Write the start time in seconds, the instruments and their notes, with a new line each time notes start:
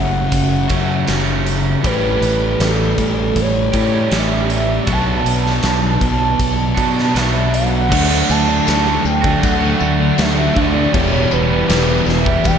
Already playing: fingered electric bass F#1, overdriven electric guitar F#2 C#3 F#3 A3 C#4 F#4, distorted electric guitar F#2 C#3 F#3 A3, soft synth lead F#5
0.32 fingered electric bass F#1, kick, closed hi-hat
0.68 fingered electric bass F#2, overdriven electric guitar F#2 C#3 F#3 A3 C#4 F#4, kick, closed hi-hat
1.06 fingered electric bass F#1, overdriven electric guitar F#2 C#3 F#3 A3 C#4 F#4, snare, closed hi-hat
1.47 closed hi-hat
1.82 fingered electric bass A1, overdriven electric guitar A2 E3 G3 C#4 G4, distorted electric guitar A3, soft synth lead B4, kick, closed hi-hat
2.21 fingered electric bass A1, closed hi-hat
2.60 fingered electric bass A1, soft synth lead A4, snare, closed hi-hat
2.97 fingered electric bass A1, distorted electric guitar A2 E3 A3, kick, closed hi-hat
3.36 fingered electric bass A1, kick, closed hi-hat
3.41 soft synth lead C#5
3.72 fingered electric bass A2, overdriven electric guitar A2 E3 G3 C#4 G4, kick, closed hi-hat
4.10 fingered electric bass A1, overdriven electric guitar A2 E3 G3 C#4, snare, closed hi-hat
4.14 overdriven electric guitar G4, soft synth lead E5
4.50 closed hi-hat
4.85 fingered electric bass B1, overdriven electric guitar B2 F#3 B3 D4 F#4, kick, closed hi-hat
4.92 soft synth lead A5
5.26 fingered electric bass B1, closed hi-hat
5.46 snare
5.63 fingered electric bass B1, snare, closed hi-hat
6.01 fingered electric bass B1, distorted electric guitar B2 F#3 B3, kick, closed hi-hat
6.39 fingered electric bass B1, kick, closed hi-hat
6.75 fingered electric bass B2, overdriven electric guitar F#3 B3 D4 F#4, kick, closed hi-hat
6.79 overdriven electric guitar B2
6.99 snare
7.13 fingered electric bass B1, overdriven electric guitar B2 F#3 B3 D4, closed hi-hat
7.17 overdriven electric guitar F#4, soft synth lead E5, snare
7.54 soft synth lead F#5, closed hi-hat
7.89 fingered electric bass D2, overdriven electric guitar D3 F#3 A3 D4 F#4, kick, crash
8.08 overdriven electric guitar A3 D4 F#4
8.29 fingered electric bass D2, soft synth lead A5, tambourine
8.48 distorted electric guitar A3 D4
8.66 fingered electric bass D2, overdriven electric guitar D3 A3 D4 F#4, snare, tambourine, crash
8.84 overdriven electric guitar D4 F#4
8.88 overdriven electric guitar A3
9.04 fingered electric bass D2, soft synth lead G5, muted overdriven electric guitar stroke, tambourine
9.21 overdriven electric guitar A3 D4 F#4, kick
9.26 muted distorted electric guitar stroke
9.43 fingered electric bass D2, soft synth lead F#5, kick, tambourine, crash
9.59 overdriven electric guitar A3 D4 F#4
9.78 fingered electric bass D2, overdriven electric guitar D3 A3 D4, tambourine
9.82 overdriven electric guitar F#4
10.00 muted distorted electric guitar stroke
10.15 fingered electric bass D2, overdriven electric guitar D3 A3 D4 F#4, snare, tambourine, crash
10.21 soft synth lead E5
10.35 overdriven electric guitar D4 F#4
10.39 overdriven electric guitar A3
10.53 fingered electric bass D2, overdriven electric guitar D3 A3 D4 F#4, kick
10.57 overdriven electric guitar D3 F#3, soft synth lead D5
10.71 overdriven electric guitar A3 D4 F#4
10.91 fingered electric bass E1, overdriven electric guitar E2 B2 E3 G3 B3 G4, soft synth lead C#5, kick, crash
10.97 overdriven electric guitar E4
11.10 overdriven electric guitar E3 G3 B3 G4
11.31 fingered electric bass E1, soft synth lead B4, tambourine
11.50 distorted electric guitar B2 E3
11.66 fingered electric bass E1, overdriven electric guitar E2 B2 E3 G3 B3 G4, soft synth lead B4, tambourine, crash
11.70 snare
11.87 overdriven electric guitar E3 G3 B3 G4
12.06 fingered electric bass E1, soft synth lead E5, muted overdriven electric guitar stroke, snare, tambourine
12.24 overdriven electric guitar E3 G3 B3 G4, muted distorted electric guitar stroke, kick
12.44 fingered electric bass E1, soft synth lead G5, kick, tambourine, crash